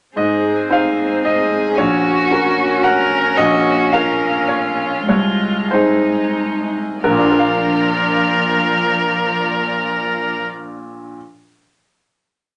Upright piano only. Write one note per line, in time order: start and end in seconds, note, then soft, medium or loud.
0.16 0.69 G#2 soft
0.16 0.67 D#5 medium
0.70 1.73 C4 soft
0.70 1.74 D#4 soft
0.70 1.74 C5 soft
0.70 1.22 F5 medium
1.25 1.74 D#5 medium
1.78 2.30 A#1 soft
1.78 2.80 C#5 medium
2.31 3.34 C#4 soft
2.31 3.34 F#4 soft
2.31 3.35 A#4 soft
2.84 3.34 F#5 medium
3.37 3.92 A#1 medium
3.37 3.89 D#5 medium
3.92 5.06 C#4 soft
3.92 5.06 F4 soft
3.92 5.06 A#4 soft
3.92 4.45 F5 medium
4.48 5.05 C#5 medium
5.08 5.70 C2 soft
5.08 5.68 C#5 medium
5.71 7.01 C4 soft
5.71 7.01 D#4 soft
5.71 7.02 G#4 soft
5.71 6.66 C5 soft
7.04 10.42 A#1 soft
7.04 7.30 A#4 medium
7.11 10.48 A#2 medium
7.18 10.55 D4 medium
7.25 10.62 F4 medium
7.31 10.69 A#4 soft
7.39 10.76 F5 soft